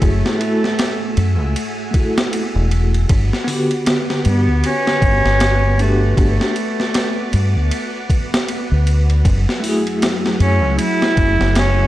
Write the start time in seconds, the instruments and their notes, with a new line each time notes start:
Already playing: tine electric piano A3 E4 F#4 G#4, string machine A3 F#5 E6
0.02 fingered electric bass F#1, cello A3, string machine G#5, kick, ride
0.26 snare
0.39 tine electric piano A3 E4 F#4 A4, ride
0.64 snare
0.79 snare, ride
1.17 fingered electric bass F#2, ride
1.41 fingered electric bass C#2
1.56 ride
1.91 tine electric piano A3 E4, kick, ride
1.96 tine electric piano F#4 A4
2.18 snare
2.33 ride
2.56 fingered electric bass E1
2.71 ride
2.94 ride
3.09 fingered electric bass G1, string machine B4 D6, kick, ride
3.33 snare
3.44 tine electric piano D3 B3, open hi-hat
3.50 tine electric piano F#4 G4
3.71 ride
3.86 snare, ride
4.10 snare
4.25 fingered electric bass G2, cello B3, ride
4.48 fingered electric bass D2
4.64 cello C#4, ride
4.87 snare
5.02 fingered electric bass G1, kick, ride
5.25 fingered electric bass G1, snare
5.40 snare, ride
5.78 cello A3, tine electric piano B3 D4 F#4, ride
5.82 tine electric piano G4
6.17 fingered electric bass G1, cello A3, kick, ride
6.41 snare
6.56 ride
6.80 snare
6.94 snare, ride
7.33 fingered electric bass G2, ride
7.56 fingered electric bass D2
7.71 ride
8.10 kick, ride
8.34 snare
8.48 ride
8.72 fingered electric bass D2
8.87 ride
9.10 ride
9.24 fingered electric bass F#1, string machine F#3 G#5 E6, kick, ride
9.49 snare
9.60 tine electric piano A3 E4, open hi-hat
9.66 tine electric piano F#4 G#4
9.87 ride
10.02 snare, ride
10.26 snare
10.40 fingered electric bass F#2, cello C#4, ride
10.64 fingered electric bass C#2
10.79 cello E4, ride
11.02 snare
11.17 fingered electric bass F#1, kick, ride
11.40 fingered electric bass F#1, snare
11.55 cello C#4, snare, ride